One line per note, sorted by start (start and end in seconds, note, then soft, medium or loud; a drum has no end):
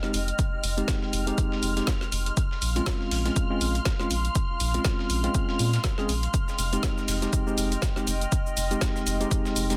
0.00 0.17 G#3 medium
0.00 0.17 C4 medium
0.00 0.17 D#4 medium
0.00 0.18 G4 medium
0.00 2.33 D#5 medium
0.00 2.33 G5 medium
0.00 9.77 C6 medium
0.00 9.77 F6 medium
0.00 snare soft
0.14 0.33 F1 medium
0.14 open hi-hat loud
0.14 shaker medium
0.28 closed hi-hat medium
0.39 kick loud
0.39 closed hi-hat medium
0.39 shaker medium
0.64 0.82 F1 loud
0.64 open hi-hat loud
0.64 shaker medium
0.77 1.24 G#3 medium
0.77 1.24 C4 medium
0.77 1.24 D#4 medium
0.77 1.24 G4 medium
0.77 closed hi-hat medium
0.88 kick loud
0.88 snare loud
0.88 closed hi-hat medium
0.88 shaker medium
1.03 snare soft
1.13 1.32 F1 loud
1.13 open hi-hat loud
1.13 shaker medium
1.27 1.73 G#3 medium
1.27 1.73 C4 medium
1.27 1.73 D#4 medium
1.27 1.74 G4 loud
1.27 closed hi-hat medium
1.38 kick loud
1.38 closed hi-hat medium
1.38 shaker medium
1.52 snare medium
1.63 1.81 F1 loud
1.63 open hi-hat loud
1.63 shaker medium
1.76 1.91 G#3 medium
1.76 1.91 C4 medium
1.76 1.91 D#4 medium
1.76 1.91 G4 medium
1.76 snare medium
1.76 closed hi-hat medium
1.87 kick loud
1.87 snare loud
1.87 closed hi-hat medium
1.87 shaker medium
2.01 snare soft
2.12 2.31 F1 medium
2.12 open hi-hat loud
2.12 shaker medium
2.26 closed hi-hat soft
2.26 closed hi-hat medium
2.37 6.30 F5 medium
2.37 kick loud
2.37 closed hi-hat medium
2.37 shaker medium
2.51 snare soft
2.62 2.80 A#1 loud
2.62 open hi-hat loud
2.62 shaker medium
2.76 3.22 G#3 medium
2.76 3.22 C4 medium
2.76 3.22 C#4 medium
2.76 3.22 F4 medium
2.76 closed hi-hat soft
2.86 kick loud
2.86 snare loud
2.86 closed hi-hat medium
2.86 shaker medium
3.01 snare soft
3.11 3.30 A#1 medium
3.11 snare soft
3.11 open hi-hat medium
3.11 open hi-hat loud
3.25 3.47 G#3 medium
3.25 3.47 C4 medium
3.25 3.47 C#4 medium
3.25 3.47 F4 medium
3.25 snare soft
3.25 closed hi-hat medium
3.36 kick loud
3.36 closed hi-hat medium
3.36 shaker medium
3.50 3.75 G#3 medium
3.50 3.75 C4 medium
3.50 3.75 C#4 medium
3.50 3.75 F4 medium
3.61 3.80 A#1 loud
3.61 open hi-hat loud
3.61 shaker medium
3.75 closed hi-hat soft
3.85 kick loud
3.85 snare loud
3.85 closed hi-hat medium
3.85 shaker medium
4.00 4.14 G#3 medium
4.00 4.14 C4 medium
4.00 4.14 C#4 medium
4.00 4.14 F4 medium
4.00 snare soft
4.11 4.29 A#1 medium
4.11 open hi-hat loud
4.11 shaker medium
4.25 closed hi-hat medium
4.35 kick loud
4.35 closed hi-hat medium
4.35 shaker medium
4.60 4.79 A#1 loud
4.60 open hi-hat loud
4.60 shaker medium
4.74 5.20 G#3 medium
4.74 5.20 C4 medium
4.74 5.21 C#4 medium
4.74 5.21 F4 medium
4.74 closed hi-hat soft
4.85 kick loud
4.85 snare loud
4.85 closed hi-hat medium
4.85 shaker medium
4.99 snare soft
5.10 5.28 A#1 loud
5.10 open hi-hat loud
5.10 shaker medium
5.24 5.70 G#3 medium
5.24 5.70 C4 medium
5.24 5.70 C#4 medium
5.24 5.70 F4 loud
5.24 closed hi-hat soft
5.34 kick loud
5.34 closed hi-hat medium
5.34 shaker medium
5.49 snare medium
5.59 5.78 A#2 medium
5.59 open hi-hat loud
5.59 shaker medium
5.73 snare soft
5.73 closed hi-hat soft
5.84 kick loud
5.84 snare loud
5.84 closed hi-hat medium
5.84 shaker medium
5.98 6.12 G#3 medium
5.98 6.12 C4 medium
5.98 6.12 C#4 medium
5.98 6.13 G#4 loud
5.98 snare soft
6.09 6.28 A#1 medium
6.09 open hi-hat loud
6.09 shaker medium
6.23 closed hi-hat soft
6.34 9.77 D#5 medium
6.34 9.77 G5 medium
6.34 kick loud
6.34 closed hi-hat medium
6.34 shaker medium
6.34 shaker soft
6.48 snare soft
6.48 shaker soft
6.59 6.77 F1 loud
6.59 open hi-hat loud
6.59 shaker medium
6.72 7.19 G#3 medium
6.72 7.19 C4 medium
6.72 7.19 D#4 medium
6.72 7.19 G4 medium
6.72 closed hi-hat soft
6.72 shaker soft
6.83 kick loud
6.83 snare loud
6.83 closed hi-hat medium
6.83 shaker medium
6.83 shaker soft
6.98 snare soft
6.98 shaker soft
7.08 7.27 F1 loud
7.08 snare soft
7.08 open hi-hat loud
7.08 open hi-hat medium
7.08 shaker medium
7.22 7.43 G#3 medium
7.22 7.44 C4 medium
7.22 7.44 D#4 medium
7.22 7.44 G4 medium
7.22 snare soft
7.22 closed hi-hat soft
7.22 shaker soft
7.33 kick loud
7.33 closed hi-hat medium
7.33 shaker medium
7.33 shaker soft
7.47 7.71 G#3 medium
7.47 7.72 C4 medium
7.47 7.72 D#4 medium
7.47 7.72 G4 medium
7.47 shaker soft
7.58 7.76 F1 loud
7.58 open hi-hat loud
7.58 shaker medium
7.72 closed hi-hat soft
7.72 shaker soft
7.82 kick loud
7.82 snare loud
7.82 closed hi-hat medium
7.82 shaker medium
7.82 shaker soft
7.96 8.11 G#3 medium
7.96 8.11 C4 medium
7.96 8.11 D#4 medium
7.96 8.11 G4 medium
7.96 snare soft
7.96 shaker soft
8.07 8.26 F1 medium
8.07 open hi-hat loud
8.07 shaker medium
8.21 closed hi-hat medium
8.21 shaker soft
8.32 kick loud
8.32 closed hi-hat medium
8.32 shaker medium
8.32 shaker soft
8.47 shaker soft
8.57 8.75 F1 loud
8.57 open hi-hat loud
8.57 shaker medium
8.71 9.17 G#3 medium
8.71 9.17 C4 medium
8.71 9.17 D#4 medium
8.71 9.17 G4 medium
8.71 closed hi-hat soft
8.71 shaker soft
8.81 kick loud
8.81 snare loud
8.81 closed hi-hat medium
8.81 shaker medium
8.81 shaker soft
8.96 snare soft
8.96 shaker soft
9.07 9.25 F1 medium
9.07 open hi-hat loud
9.07 shaker medium
9.20 9.67 G#3 medium
9.20 9.67 C4 medium
9.20 9.67 D#4 medium
9.20 9.67 G4 loud
9.20 closed hi-hat medium
9.20 shaker soft
9.31 kick loud
9.31 closed hi-hat medium
9.31 shaker medium
9.31 shaker soft
9.45 snare medium
9.45 shaker soft
9.56 9.75 F1 loud
9.56 open hi-hat loud
9.56 shaker medium
9.70 9.77 G#3 medium
9.70 9.77 C4 medium
9.70 9.77 D#4 medium
9.70 9.77 G4 medium
9.70 snare medium
9.70 closed hi-hat medium
9.70 shaker soft